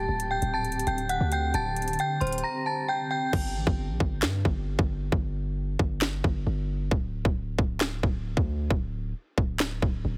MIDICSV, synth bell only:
0, 0, Header, 1, 2, 480
1, 0, Start_track
1, 0, Tempo, 447761
1, 1652, Time_signature, 4, 2, 24, 8
1, 10910, End_track
2, 0, Start_track
2, 0, Title_t, "Synth bell"
2, 0, Program_c, 0, 98
2, 0, Note_on_c, 0, 81, 96
2, 0, Note_on_c, 0, 93, 71
2, 294, Note_off_c, 0, 81, 0
2, 298, Note_off_c, 0, 93, 0
2, 328, Note_on_c, 0, 79, 65
2, 337, Note_on_c, 0, 91, 55
2, 548, Note_off_c, 0, 79, 0
2, 553, Note_off_c, 0, 91, 0
2, 575, Note_on_c, 0, 81, 72
2, 584, Note_on_c, 0, 93, 54
2, 912, Note_off_c, 0, 81, 0
2, 917, Note_off_c, 0, 93, 0
2, 932, Note_on_c, 0, 79, 66
2, 940, Note_on_c, 0, 91, 58
2, 1150, Note_off_c, 0, 79, 0
2, 1155, Note_off_c, 0, 91, 0
2, 1172, Note_on_c, 0, 78, 76
2, 1181, Note_on_c, 0, 90, 58
2, 1390, Note_off_c, 0, 78, 0
2, 1395, Note_off_c, 0, 90, 0
2, 1419, Note_on_c, 0, 79, 84
2, 1427, Note_on_c, 0, 91, 68
2, 1634, Note_off_c, 0, 79, 0
2, 1638, Note_off_c, 0, 91, 0
2, 1654, Note_on_c, 0, 81, 86
2, 1663, Note_on_c, 0, 93, 82
2, 2104, Note_off_c, 0, 81, 0
2, 2109, Note_off_c, 0, 93, 0
2, 2142, Note_on_c, 0, 79, 85
2, 2151, Note_on_c, 0, 91, 66
2, 2356, Note_off_c, 0, 79, 0
2, 2360, Note_off_c, 0, 91, 0
2, 2364, Note_on_c, 0, 84, 72
2, 2372, Note_on_c, 0, 72, 57
2, 2586, Note_off_c, 0, 84, 0
2, 2590, Note_off_c, 0, 72, 0
2, 2610, Note_on_c, 0, 82, 85
2, 2619, Note_on_c, 0, 94, 65
2, 2829, Note_off_c, 0, 82, 0
2, 2834, Note_off_c, 0, 94, 0
2, 2852, Note_on_c, 0, 81, 72
2, 2860, Note_on_c, 0, 93, 59
2, 3070, Note_off_c, 0, 81, 0
2, 3075, Note_off_c, 0, 93, 0
2, 3092, Note_on_c, 0, 79, 79
2, 3101, Note_on_c, 0, 91, 63
2, 3310, Note_off_c, 0, 79, 0
2, 3315, Note_off_c, 0, 91, 0
2, 3330, Note_on_c, 0, 79, 82
2, 3338, Note_on_c, 0, 91, 64
2, 3549, Note_off_c, 0, 79, 0
2, 3553, Note_off_c, 0, 91, 0
2, 10910, End_track
0, 0, End_of_file